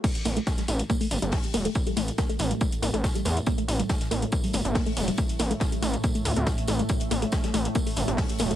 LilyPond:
<<
  \new Staff \with { instrumentName = "Synth arpeggio sound" } { \time 4/4 \key g \dorian \tempo 4 = 140 a16 r16 bes16 a16 r16 g16 a16 r16 bes16 a16 r16 g16 a16 r16 bes16 a16 | r16 g16 a16 r16 bes16 a16 r16 g16 a16 r16 bes16 a16 r16 g16 a16 r16 | bes16 a16 r16 g16 a16 r16 bes16 a16 r16 g16 a16 r16 bes16 a16 r16 g16 | a16 r16 bes16 a16 r16 g16 a16 r16 bes16 a16 r16 c'16 f'16 r16 a16 a16 |
a16 r16 bes16 a16 r16 g16 a16 r16 bes16 a16 r16 g16 a16 r16 bes16 a16 | }
  \new Staff \with { instrumentName = "Ambient pad" } { \clef bass \time 4/4 \key g \dorian <a, a>1~ | <a, a>1~ | <a, a>1~ | <a, a>1~ |
<a, a>1 | }
  \new Staff \with { instrumentName = "Analog synth bass" } { \clef bass \time 4/4 \key g \dorian r8 a,,16 r8. a,,16 r8. g,,16 g,,16 r8 e,,16 r16 | r8 a,,16 r8. a,,16 r8. a,,16 a,,16 r8 e,16 r16 | r8 a,,16 r8. a,,16 r8. g,,16 g,,16 r8 e,,16 r16 | r8 a,,16 r8. a,,16 r8. d,16 d,16 r8 a,,16 r16 |
r8 a,,16 r8. a,,16 r8. g,,16 g,,16 r8 e,,16 r16 | }
  \new DrumStaff \with { instrumentName = "Drums" } \drummode { \time 4/4 <cymc hh bd tamb>16 hh16 <hho tamb>16 hh16 <hh bd sn tamb>16 <hh sn>16 <hho tamb>16 hh16 <hh bd tamb>16 hho16 <hho tamb>16 hh16 <hh hho bd sn>16 hh16 <hho tamb>16 hh16 | <hh bd tamb>16 hh16 <hho sn tamb>16 hh16 <hh bd sn tamb>16 hh16 <hho tamb>16 hh16 <hh bd tamb>16 hh16 <hho tamb>16 hh16 <hh bd sn tamb>16 hh16 <hho tamb>16 hh16 | <hh bd tamb>16 hh16 <hho tamb>16 hh16 <hh bd sn tamb>16 <hh sn>16 <hho tamb>16 hh16 <hh bd tamb>16 hho16 <hho tamb>16 hh16 <hh hho bd sn>16 hh16 <hho tamb>16 hh16 | <hh bd tamb>16 hh16 <hho sn tamb>16 hh16 <hh bd sn tamb>16 hh16 <hho tamb>16 hh16 <hh bd tamb>16 hh16 <hho tamb>16 hh16 <hh bd sn tamb>16 hh16 <hho tamb>16 hh16 |
<hh bd tamb>16 hh16 <hho tamb>16 hh16 <hh bd sn tamb>16 <hh sn>16 <hho tamb>16 hh16 <hh bd tamb>16 hho16 <hho tamb>16 hh16 <hh hho bd sn>16 hh16 <hho tamb>16 hh16 | }
>>